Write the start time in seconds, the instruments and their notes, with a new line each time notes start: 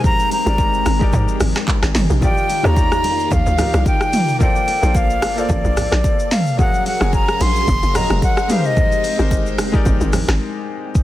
Already playing: grand piano G#3 D#4 G4 A#4 C5, string machine G#3 C4 G4
0.04 flute A#5, kick, low conga, shaker
0.19 shaker
0.31 flute A#5, open hi-hat, low bongo, shaker
0.45 log drum bass G#1, grand piano G#3 D#4 G4 A#4 D5, high bongo, shaker
0.58 kick, high bongo, shaker
0.74 shaker
0.86 log drum bass G#1, cross-stick, open hi-hat, low bongo, shaker
0.99 grand piano G#3 D#4 G4 A#4 D5, kick, shaker
1.12 log drum bass G#2, kick, low conga, shaker
1.28 shaker
1.40 log drum bass G#1, cross-stick, open hi-hat, high bongo, low conga, shaker
1.55 cross-stick, snare, low bongo, shaker
1.68 kick, clap, high bongo, shaker
1.83 log drum bass G#1, cross-stick, snare, shaker
1.95 log drum bass G1, snare, mid tom, open hi-hat, shaker
2.10 log drum bass A#1, shaker
2.21 grand piano D#3 D#4 F4 G4 D5, string machine D#3 A#3 F4 D5, flute G5, kick, low conga, shaker
2.37 shaker
2.50 open hi-hat, low bongo, shaker
2.63 log drum bass D#2, grand piano D#3 D#4 F4 G4 C#5, flute A#5, cross-stick, high bongo, shaker
2.73 grand piano D5, kick, high bongo, shaker
2.92 cross-stick, shaker
3.04 log drum bass F2, open hi-hat, low bongo, shaker
3.19 shaker
3.31 log drum bass D#2, flute F5, kick, low conga, shaker
3.46 log drum bass D2, shaker
3.57 grand piano D#3 D#4 F4 G4 A#4, cross-stick, open hi-hat, high bongo, low conga, shaker
3.74 log drum bass C2, cross-stick, low bongo, shaker
3.86 flute G5, kick, high bongo, shaker
4.01 cross-stick, shaker
4.13 mid tom, open hi-hat, shaker
4.28 shaker
4.39 grand piano A#3 F4 A4 C5 D5, string machine A#3 A4, flute G5, kick, low conga, shaker
4.56 shaker
4.68 open hi-hat, low bongo, shaker
4.81 log drum bass A#1, grand piano A#3 F4 A4 C5 D5, high bongo, shaker
4.94 flute F5, kick, high bongo, shaker
5.10 shaker
5.22 log drum bass G1, cross-stick, open hi-hat, low bongo, shaker
5.36 grand piano A#3 F4 A4 C5 F5, flute D5, shaker
5.49 log drum bass A1, kick, low conga, shaker
5.65 log drum bass A#1, shaker
5.77 cross-stick, open hi-hat, high bongo, low conga, shaker
5.92 log drum bass A#1, cross-stick, snare, low bongo, shaker
6.04 kick, high bongo, shaker
6.19 shaker
6.31 flute F5, snare, mid tom, open hi-hat, shaker
6.47 shaker
6.57 grand piano F#3 F#4 G#4 A#4 F5, string machine F#3 C#4 G#4 A#4 F5, flute F#5, kick, low conga, shaker
6.74 shaker
6.86 flute F#5, open hi-hat, low bongo, shaker
6.99 log drum bass F#1, grand piano F#3 F#4 G#4 A#4 G#5, cross-stick, high bongo, shaker
7.13 flute A#5, kick, high bongo, shaker
7.28 cross-stick, shaker
7.41 log drum bass A#1, flute C6, open hi-hat, low bongo, shaker
7.56 shaker
7.67 log drum bass F#1, kick, low conga, shaker
7.83 log drum bass F#1, shaker
7.94 grand piano F#3 F#4 G#4 A#4 D#5, flute A#5, cross-stick, open hi-hat, high bongo, low conga, shaker
8.10 log drum bass F1, cross-stick, low bongo, shaker
8.22 flute F#5, kick, high bongo, shaker
8.37 cross-stick, shaker
8.48 grand piano G#3 D#4 G4 A#4 B4, string machine G#3 C4 G4, flute F5, mid tom, open hi-hat, shaker
8.58 grand piano C5
8.65 flute D#5, shaker
8.77 kick, low conga, shaker
8.92 shaker
9.04 open hi-hat, low bongo, shaker
9.18 log drum bass G#1, grand piano G#3 D#4 G4 A#4 C5, high bongo, shaker
9.31 kick, high bongo, shaker
9.46 shaker
9.58 log drum bass F1, cross-stick, open hi-hat, low bongo, shaker
9.72 grand piano G#3 D#4 G4 A#4 D5, kick, shaker
9.85 log drum bass G1, kick, low conga, shaker
10.01 log drum bass G#1, shaker
10.13 cross-stick, open hi-hat, high bongo, low conga, shaker
10.28 log drum bass G#1, cross-stick, snare, low bongo, shaker
10.95 kick, shaker